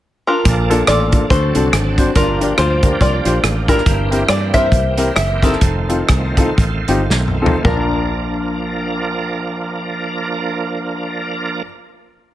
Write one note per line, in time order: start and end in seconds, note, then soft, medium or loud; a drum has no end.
0.27 1.09 D4 soft
0.27 0.88 F4 medium
0.27 0.89 A#4 medium
0.45 0.82 A#1 loud
0.45 1.09 A#2 medium
0.45 1.30 F3 medium
0.45 1.30 A#3 medium
0.45 1.30 D4 soft
0.45 2.14 A4 medium
0.45 kick medium
0.45 closed hi-hat medium
0.70 0.80 A#3 medium
0.70 0.80 D4 medium
0.70 0.80 F4 medium
0.70 0.80 A4 medium
0.70 closed hi-hat medium
0.87 1.24 A1 medium
0.87 1.28 F4 medium
0.87 1.28 A4 medium
0.87 1.30 D5 medium
0.87 cross-stick medium
0.87 closed hi-hat medium
1.12 1.22 A#3 medium
1.12 1.22 D4 medium
1.12 1.22 F4 medium
1.12 1.22 A4 medium
1.12 kick medium
1.12 closed hi-hat medium
1.30 1.52 D2 medium
1.30 1.94 D3 medium
1.30 2.15 F#3 soft
1.30 2.15 C4 soft
1.30 3.83 D4 soft
1.30 2.12 F#4 medium
1.30 2.12 A4 soft
1.30 2.16 C5 medium
1.30 kick medium
1.30 closed hi-hat medium
1.55 1.71 C2 medium
1.55 1.65 C4 medium
1.55 1.65 D4 medium
1.55 1.65 F#4 medium
1.55 1.65 A4 medium
1.55 closed hi-hat medium
1.73 2.09 G#1 medium
1.73 cross-stick medium
1.73 closed hi-hat medium
1.98 2.07 C4 medium
1.98 2.08 D4 medium
1.98 2.08 F#4 medium
1.98 2.08 C5 medium
1.98 kick medium
1.98 closed hi-hat medium
2.15 2.52 G1 medium
2.15 2.79 G2 medium
2.15 3.84 F3 medium
2.15 5.58 A#3 medium
2.15 2.97 D4 medium
2.15 2.58 F4 medium
2.15 3.84 G4 medium
2.15 2.55 A#4 medium
2.15 kick loud
2.15 closed hi-hat medium
2.41 2.50 D4 medium
2.41 2.50 F4 medium
2.41 2.51 G4 medium
2.41 2.51 A#4 medium
2.41 closed hi-hat medium
2.58 2.94 D2 medium
2.58 3.00 F4 medium
2.58 3.01 C5 medium
2.58 cross-stick medium
2.58 closed hi-hat medium
2.83 2.92 D4 medium
2.83 2.93 F4 medium
2.83 2.93 G4 medium
2.83 2.93 A#4 medium
2.83 kick medium
2.83 closed hi-hat medium
3.01 3.22 C2 medium
3.01 3.82 F4 medium
3.01 3.67 A#4 medium
3.01 3.64 D5 medium
3.01 kick medium
3.01 closed hi-hat medium
3.25 3.40 A#1 medium
3.25 3.35 D4 medium
3.25 3.35 F4 medium
3.25 3.35 G4 medium
3.25 3.35 C5 medium
3.25 closed hi-hat medium
3.43 3.79 A1 medium
3.43 cross-stick medium
3.43 closed hi-hat medium
3.68 3.77 D4 medium
3.68 4.50 E4 medium
3.68 3.78 F4 medium
3.68 3.78 G4 medium
3.68 3.78 A#4 medium
3.68 4.25 A#4 medium
3.68 kick medium
3.68 closed hi-hat medium
3.78 cross-stick soft
3.86 4.22 G1 medium
3.86 4.50 G2 medium
3.86 5.60 E3 medium
3.86 5.60 C4 medium
3.86 5.60 G4 medium
3.86 kick loud
3.86 closed hi-hat medium
4.11 4.20 C4 medium
4.11 4.20 E4 medium
4.11 4.20 G4 medium
4.11 4.21 A#4 medium
4.11 closed hi-hat medium
4.29 4.73 G2 medium
4.29 4.52 D5 medium
4.29 cross-stick loud
4.29 closed hi-hat medium
4.53 4.63 C4 medium
4.53 4.63 E4 soft
4.53 4.63 G4 medium
4.53 5.39 A#4 medium
4.53 4.63 C5 medium
4.53 5.39 C5 medium
4.53 4.95 E5 loud
4.53 kick medium
4.53 cross-stick soft
4.53 closed hi-hat medium
4.72 5.09 C2 medium
4.72 kick medium
4.72 closed hi-hat medium
4.97 5.07 C4 medium
4.97 5.07 E4 medium
4.97 5.08 G4 medium
4.97 5.08 A#4 medium
4.97 closed hi-hat medium
5.16 5.55 F#1 medium
5.16 5.43 E5 medium
5.16 cross-stick loud
5.16 closed hi-hat medium
5.42 5.52 C4 medium
5.42 7.06 C4 soft
5.42 7.06 D#4 medium
5.42 5.52 E4 medium
5.42 5.52 G4 medium
5.42 7.06 A4 medium
5.42 5.53 A#4 medium
5.42 kick medium
5.42 closed hi-hat medium
5.53 cross-stick soft
5.61 6.02 F1 medium
5.61 7.63 D#3 medium
5.61 7.63 A3 medium
5.61 7.63 C4 medium
5.61 7.63 F4 medium
5.61 kick loud
5.61 closed hi-hat medium
5.89 5.99 C4 medium
5.89 5.99 D#4 medium
5.89 6.00 F4 medium
5.89 6.00 A4 medium
5.89 closed hi-hat medium
6.09 6.51 C2 medium
6.09 kick medium
6.09 cross-stick medium
6.09 closed hi-hat medium
6.37 6.48 C4 medium
6.37 6.49 D#4 medium
6.37 6.48 F4 medium
6.37 6.49 A4 medium
6.37 kick medium
6.37 closed hi-hat medium
6.58 6.83 A1 medium
6.58 kick medium
6.58 closed hi-hat medium
6.88 7.07 G1 medium
6.88 7.00 C4 medium
6.88 7.00 D#4 medium
6.88 7.00 F4 medium
6.88 7.00 G4 medium
6.88 closed hi-hat medium
7.10 7.57 B1 medium
7.10 snare soft
7.28 mid tom soft
7.42 7.54 C4 medium
7.42 7.54 D#4 medium
7.42 7.54 F4 medium
7.42 7.54 A4 medium
7.46 floor tom medium
7.63 11.63 A#1 medium
7.63 11.62 F3 medium
7.63 11.61 A#3 medium
7.63 11.62 A#3 soft
7.63 11.62 D4 medium
7.63 11.63 D4 soft
7.63 11.64 F4 medium
7.63 11.62 A#4 medium
7.63 11.63 A#4 medium
7.63 11.65 A5 medium
7.63 kick loud
7.63 floor tom medium